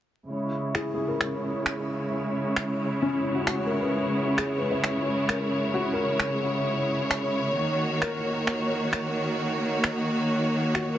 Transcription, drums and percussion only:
0.75 finger snap medium
1.21 finger snap medium
1.66 finger snap medium
2.56 finger snap medium
3.47 finger snap loud
4.38 finger snap loud
4.84 finger snap medium
5.29 finger snap loud
6.20 finger snap loud
7.11 finger snap loud
8.02 finger snap medium
8.47 finger snap medium
8.93 finger snap medium
9.84 finger snap medium
10.75 finger snap medium

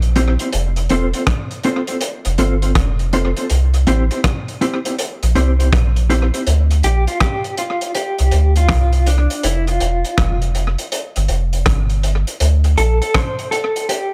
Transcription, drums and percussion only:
0.02 closed hi-hat soft
0.16 closed hi-hat medium
0.39 closed hi-hat medium
0.53 closed hi-hat medium
0.76 closed hi-hat soft
0.89 closed hi-hat medium
1.14 closed hi-hat medium
1.27 kick loud
1.27 cross-stick loud
1.27 closed hi-hat medium
1.51 closed hi-hat soft
1.64 closed hi-hat medium
1.87 closed hi-hat medium
2.01 closed hi-hat medium
2.25 closed hi-hat medium
2.38 closed hi-hat medium
2.62 closed hi-hat soft
2.75 kick loud
2.75 cross-stick loud
2.75 closed hi-hat medium
2.99 closed hi-hat soft
3.13 closed hi-hat medium
3.37 closed hi-hat medium
3.50 closed hi-hat medium
3.74 closed hi-hat soft
3.87 closed hi-hat medium
4.11 closed hi-hat medium
4.24 kick loud
4.24 cross-stick loud
4.24 closed hi-hat medium
4.48 closed hi-hat soft
4.61 closed hi-hat medium
4.85 closed hi-hat medium
4.99 closed hi-hat medium
5.23 closed hi-hat medium
5.36 closed hi-hat medium
5.60 closed hi-hat soft
5.73 kick loud
5.73 cross-stick loud
5.73 closed hi-hat medium
5.96 closed hi-hat soft
6.10 closed hi-hat medium
6.34 closed hi-hat medium
6.47 closed hi-hat medium
6.71 closed hi-hat soft
6.83 closed hi-hat medium
7.07 closed hi-hat soft
7.20 kick loud
7.20 cross-stick loud
7.20 closed hi-hat medium
7.44 closed hi-hat soft
7.58 closed hi-hat medium
7.81 closed hi-hat medium
7.95 closed hi-hat medium
8.19 closed hi-hat medium
8.31 closed hi-hat medium
8.56 closed hi-hat soft
8.69 kick loud
8.69 cross-stick loud
8.69 closed hi-hat medium
8.93 closed hi-hat soft
9.06 closed hi-hat medium
9.30 closed hi-hat medium
9.43 closed hi-hat medium
9.67 closed hi-hat medium
9.80 closed hi-hat medium
10.05 closed hi-hat medium
10.18 kick loud
10.18 cross-stick loud
10.18 closed hi-hat medium
10.42 closed hi-hat soft
10.55 closed hi-hat medium
10.78 closed hi-hat medium
10.92 closed hi-hat medium
11.16 closed hi-hat medium
11.28 closed hi-hat medium
11.53 closed hi-hat soft
11.66 kick loud
11.66 cross-stick loud
11.66 closed hi-hat medium
11.90 closed hi-hat soft
12.03 closed hi-hat medium
12.27 closed hi-hat medium
12.40 closed hi-hat medium
12.64 closed hi-hat soft
12.77 closed hi-hat medium
13.02 closed hi-hat soft
13.14 kick loud
13.14 cross-stick loud
13.14 closed hi-hat medium
13.39 closed hi-hat soft
13.52 closed hi-hat medium
13.76 closed hi-hat medium
13.89 closed hi-hat medium

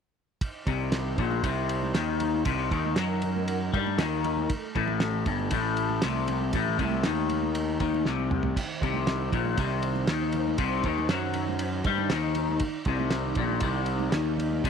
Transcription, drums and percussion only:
0.41 kick loud
0.41 ride medium
0.67 kick medium
0.67 ride medium
0.92 snare loud
0.92 ride medium
1.18 kick loud
1.18 ride medium
1.18 low conga medium
1.31 high conga medium
1.43 kick loud
1.43 ride medium
1.69 ride medium
1.83 high conga medium
1.95 snare loud
1.95 ride medium
2.20 ride medium
2.20 low conga medium
2.34 high conga medium
2.45 kick loud
2.45 ride medium
2.71 kick loud
2.71 ride medium
2.85 high conga medium
2.96 snare medium
2.96 ride medium
3.22 ride medium
3.22 low conga medium
3.36 high conga medium
3.48 ride medium
3.74 kick medium
3.74 ride medium
3.87 high conga medium
3.99 snare loud
3.99 ride medium
4.24 ride medium
4.24 low conga medium
4.37 high conga medium
4.50 kick loud
4.50 ride medium
4.75 kick medium
4.75 ride medium
4.88 high conga medium
5.00 snare loud
5.00 ride medium
5.26 kick loud
5.26 ride medium
5.26 low conga medium
5.40 high conga medium
5.51 kick loud
5.51 ride loud
5.77 ride medium
5.90 high conga medium
6.02 snare loud
6.02 ride loud
6.28 ride medium
6.28 low conga medium
6.41 high conga medium
6.53 kick loud
6.53 ride loud
6.66 low conga medium
6.79 kick medium
6.79 ride medium
6.91 high conga medium
7.03 snare loud
7.03 ride medium
7.29 ride medium
7.29 low conga medium
7.43 high conga medium
7.55 ride medium
7.80 kick medium
7.80 ride medium
7.94 high conga medium
8.05 snare medium
8.19 high conga medium
8.31 mid tom medium
8.31 low conga medium
8.43 floor tom medium
8.43 high conga medium
8.56 kick medium
8.56 crash medium
8.56 ride medium
8.82 kick medium
8.82 ride medium
8.94 high conga medium
9.07 snare loud
9.07 ride medium
9.32 kick loud
9.32 ride medium
9.32 low conga medium
9.45 high conga medium
9.57 kick loud
9.57 ride medium
9.83 ride medium
9.96 high conga medium
10.07 snare loud
10.07 ride loud
10.32 ride medium
10.32 low conga medium
10.48 high conga medium
10.58 kick loud
10.58 ride loud
10.84 kick medium
10.84 ride medium
10.98 high conga medium
11.09 snare loud
11.09 ride medium
11.34 ride medium
11.34 low conga medium
11.48 high conga medium
11.59 ride medium
11.84 kick loud
11.84 ride medium
11.98 high conga medium
12.10 snare loud
12.10 ride medium
12.35 ride medium
12.35 low conga medium
12.49 high conga medium
12.60 kick loud
12.60 ride medium
12.85 kick loud
12.85 ride medium
13.00 high conga medium
13.10 snare medium
13.10 ride medium
13.35 kick loud
13.35 ride medium
13.35 low conga medium
13.49 high conga medium
13.60 kick loud
13.60 ride loud
13.86 ride medium
13.99 high conga medium
14.12 snare loud
14.12 ride medium
14.38 ride medium
14.38 low conga medium
14.51 high conga medium
14.64 kick loud
14.64 ride medium

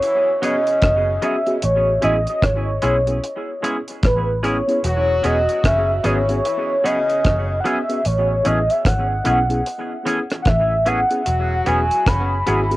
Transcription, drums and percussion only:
0.03 closed hi-hat medium
0.43 closed hi-hat medium
0.67 closed hi-hat medium
0.82 kick loud
0.82 cross-stick loud
0.82 closed hi-hat medium
1.22 closed hi-hat medium
1.46 closed hi-hat soft
1.62 closed hi-hat loud
2.02 closed hi-hat medium
2.27 closed hi-hat medium
2.43 kick medium
2.43 cross-stick loud
2.43 closed hi-hat medium
2.82 closed hi-hat medium
3.07 closed hi-hat soft
3.24 closed hi-hat medium
3.64 closed hi-hat medium
3.88 closed hi-hat soft
4.03 kick loud
4.03 cross-stick loud
4.03 closed hi-hat medium
4.44 closed hi-hat medium
4.69 closed hi-hat soft
4.84 closed hi-hat medium
5.24 closed hi-hat medium
5.49 closed hi-hat medium
5.64 kick medium
5.64 cross-stick loud
5.64 closed hi-hat medium
6.04 closed hi-hat medium
6.29 closed hi-hat soft
6.45 closed hi-hat medium
6.85 closed hi-hat medium
7.09 closed hi-hat soft
7.24 kick loud
7.24 cross-stick loud
7.24 closed hi-hat medium
7.65 closed hi-hat medium
7.90 closed hi-hat soft
8.05 closed hi-hat medium
8.45 closed hi-hat medium
8.70 closed hi-hat medium
8.85 kick medium
8.85 cross-stick loud
8.85 closed hi-hat medium
9.25 closed hi-hat medium
9.50 closed hi-hat soft
9.66 closed hi-hat medium
10.07 closed hi-hat medium
10.30 cross-stick medium
10.30 closed hi-hat soft
10.45 kick loud
10.45 cross-stick loud
10.45 closed hi-hat medium
10.86 closed hi-hat medium
11.11 closed hi-hat soft
11.26 closed hi-hat medium
11.66 closed hi-hat medium
11.91 closed hi-hat medium
12.06 kick loud
12.06 cross-stick loud
12.06 closed hi-hat medium
12.47 closed hi-hat medium
12.71 closed hi-hat soft

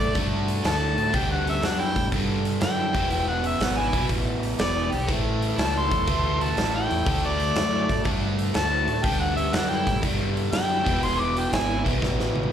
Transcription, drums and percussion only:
0.15 kick medium
0.15 open hi-hat medium
0.48 open hi-hat medium
0.65 snare loud
0.65 open hi-hat medium
0.98 open hi-hat medium
1.14 kick loud
1.14 open hi-hat medium
1.47 open hi-hat medium
1.63 snare loud
1.63 open hi-hat medium
1.96 kick medium
1.96 open hi-hat medium
2.12 kick medium
2.12 open hi-hat medium
2.45 open hi-hat medium
2.61 snare loud
2.61 open hi-hat medium
2.95 kick medium
2.95 open hi-hat medium
3.11 open hi-hat medium
3.44 open hi-hat medium
3.60 snare loud
3.60 open hi-hat medium
3.93 kick medium
3.93 open hi-hat medium
4.09 kick medium
4.09 open hi-hat medium
4.43 open hi-hat medium
4.59 snare loud
4.59 open hi-hat medium
4.92 open hi-hat medium
5.09 kick loud
5.09 open hi-hat medium
5.42 open hi-hat medium
5.59 snare loud
5.59 open hi-hat medium
5.91 kick medium
5.91 open hi-hat medium
6.07 kick loud
6.07 open hi-hat medium
6.41 open hi-hat medium
6.57 snare loud
6.57 open hi-hat medium
6.91 open hi-hat medium
7.06 kick loud
7.06 open hi-hat medium
7.40 open hi-hat medium
7.56 snare loud
7.56 open hi-hat medium
7.89 kick medium
7.89 open hi-hat medium
8.05 kick loud
8.05 open hi-hat medium
8.39 open hi-hat medium
8.54 snare loud
8.54 open hi-hat medium
8.88 open hi-hat medium
9.04 kick loud
9.04 open hi-hat medium
9.37 open hi-hat medium
9.53 snare loud
9.53 open hi-hat medium
9.87 kick medium
9.87 snare soft
9.87 open hi-hat medium
10.03 kick loud
10.03 open hi-hat medium
10.37 open hi-hat medium
10.53 snare loud
10.53 open hi-hat medium
10.86 kick medium
10.86 open hi-hat medium
11.03 open hi-hat medium
11.37 open hi-hat medium
11.53 snare loud
11.53 open hi-hat medium
11.86 kick medium
11.86 open hi-hat medium
12.02 kick medium
12.02 snare medium
12.20 snare medium
12.36 high tom medium
12.43 high tom medium

